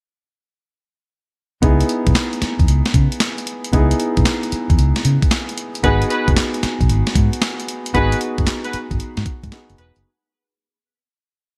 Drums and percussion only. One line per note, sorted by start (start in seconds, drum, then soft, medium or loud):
1.63 kick loud
1.63 closed hi-hat medium
1.81 closed hi-hat medium
1.89 closed hi-hat medium
2.07 kick medium
2.07 closed hi-hat medium
2.15 snare loud
2.15 clap medium
2.15 closed hi-hat medium
2.33 closed hi-hat soft
2.42 snare medium
2.42 closed hi-hat medium
2.59 kick medium
2.59 closed hi-hat soft
2.68 closed hi-hat medium
2.86 snare medium
2.86 closed hi-hat soft
2.94 kick medium
2.94 closed hi-hat medium
3.12 closed hi-hat medium
3.20 snare loud
3.20 clap medium
3.20 closed hi-hat medium
3.38 closed hi-hat soft
3.47 closed hi-hat medium
3.64 closed hi-hat soft
3.73 kick loud
3.73 closed hi-hat medium
3.91 closed hi-hat medium
4.00 closed hi-hat medium
4.17 kick medium
4.17 closed hi-hat soft
4.25 snare loud
4.25 clap medium
4.25 closed hi-hat medium
4.43 closed hi-hat soft
4.52 closed hi-hat medium
4.70 kick medium
4.70 closed hi-hat soft
4.79 closed hi-hat medium
4.96 snare medium
4.96 closed hi-hat soft
5.05 closed hi-hat medium
5.22 kick loud
5.22 closed hi-hat medium
5.31 snare loud
5.31 clap medium
5.31 closed hi-hat medium
5.49 closed hi-hat soft
5.58 closed hi-hat medium
5.75 closed hi-hat medium
5.84 kick loud
5.84 closed hi-hat medium
6.02 closed hi-hat medium
6.10 closed hi-hat medium
6.28 kick loud
6.28 closed hi-hat soft
6.37 snare loud
6.37 clap medium
6.37 closed hi-hat medium
6.54 closed hi-hat soft
6.63 snare medium
6.63 closed hi-hat medium
6.81 kick medium
6.81 closed hi-hat soft
6.89 closed hi-hat medium
7.07 snare medium
7.07 closed hi-hat soft
7.15 kick loud
7.15 closed hi-hat medium
7.33 closed hi-hat medium
7.42 snare loud
7.42 clap loud
7.42 closed hi-hat medium
7.60 closed hi-hat soft
7.68 closed hi-hat medium
7.86 closed hi-hat medium
7.95 kick loud
7.95 closed hi-hat medium
8.12 closed hi-hat medium
8.21 closed hi-hat medium
8.38 kick loud
8.38 closed hi-hat soft
8.47 snare loud
8.47 clap medium
8.47 closed hi-hat medium
8.64 closed hi-hat soft
8.73 closed hi-hat medium
8.91 kick medium
8.91 closed hi-hat soft
9.00 closed hi-hat medium
9.17 snare medium
9.17 closed hi-hat soft
9.26 kick medium
9.26 closed hi-hat medium
9.43 kick loud
9.43 closed hi-hat medium
9.52 snare loud
9.52 clap loud
9.52 closed hi-hat medium
9.70 closed hi-hat soft
9.78 closed hi-hat medium
9.96 closed hi-hat soft